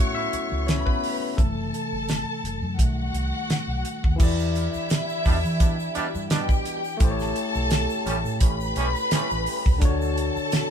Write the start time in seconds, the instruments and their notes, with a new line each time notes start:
Already playing: fingered electric bass A2, tine electric piano C#3 F#3 A3 B3 C#4 E4 A4 C#5 E5 F#5, string section C#5 C#6
0.00 tine electric piano F#4
0.07 tine electric piano F#5
0.15 tine electric piano E4 E5
0.33 muted fingered electric bass stroke, closed hi-hat
0.52 fingered electric bass C#2
0.67 tine electric piano C#4 C#5, string section B4 B5, snare, closed hi-hat
0.78 tine electric piano C#5
0.86 tine electric piano B3 B4, kick
1.04 open hi-hat
1.37 fingered electric bass F#1, tine electric piano C3 E3 A3 A4, string section A4 A5, kick, closed hi-hat
1.74 closed hi-hat
1.92 fingered electric bass G1
2.09 snare, closed hi-hat
2.44 fingered electric bass F#1, closed hi-hat
2.62 fingered electric bass F#2
2.78 fingered electric bass B1, tine electric piano D#3 G3 A3, string section F#4 F#5, kick, closed hi-hat
3.13 fingered electric bass C2, closed hi-hat
3.50 muted fingered electric bass stroke, snare, closed hi-hat
3.68 fingered electric bass B1
3.85 closed hi-hat
4.04 fingered electric bass D#2, kick
4.16 tine electric piano E3 E4, string section E4 E5, kick, shaker
4.20 fingered electric bass E2, french horn section E3 D4 G4, tine electric piano G4 D5, crash
4.39 shaker
4.55 closed hi-hat, shaker
4.74 muted fingered electric bass stroke, shaker
4.89 snare, closed hi-hat, shaker
5.09 shaker
5.25 fingered electric bass E2, trombone section B2 G3 D4, kick, open hi-hat, shaker
5.45 fingered electric bass E3, shaker
5.60 trombone section B2 G3 D4, kick, closed hi-hat, shaker
5.79 shaker
5.95 trombone section B2 G3 D4, muted fingered electric bass stroke, closed hi-hat, shaker
6.15 fingered electric bass G2, shaker
6.30 trombone section B2 G3 D4, string section G4 G5, snare, closed hi-hat, shaker
6.49 kick, shaker
6.65 closed hi-hat, shaker
6.84 shaker
6.97 fingered electric bass A1, french horn section C#3 A3, tine electric piano A3 E4, string section A4 A5, kick, closed hi-hat, shaker
7.02 tine electric piano G4 C5
7.10 tine electric piano C#5
7.20 snare, shaker
7.36 closed hi-hat, shaker
7.55 fingered electric bass B1, shaker
7.70 snare, closed hi-hat, shaker
7.90 shaker
8.05 fingered electric bass A1, trombone section A2 G3 C#4, closed hi-hat, shaker
8.25 fingered electric bass A2, shaker
8.41 fingered electric bass A1, trombone section A2 G3 C#4, string section B4 B5, kick, closed hi-hat, shaker
8.60 shaker
8.76 fingered electric bass B1, trombone section A2 G3 C#4, closed hi-hat, shaker
8.95 shaker
9.11 trombone section A2 G3 C#4, muted fingered electric bass stroke, snare, closed hi-hat, shaker
9.30 fingered electric bass A1, shaker
9.46 open hi-hat, shaker
9.66 fingered electric bass C#2, kick, shaker
9.78 fingered electric bass D2, tine electric piano D3 D4, french horn section F#4 C#5, string section A4 A5, kick, closed hi-hat, shaker
9.82 french horn section D3, tine electric piano F4 C#5
9.89 tine electric piano F#4
10.01 shaker
10.17 closed hi-hat, shaker
10.36 muted fingered electric bass stroke, shaker
10.51 snare, closed hi-hat, shaker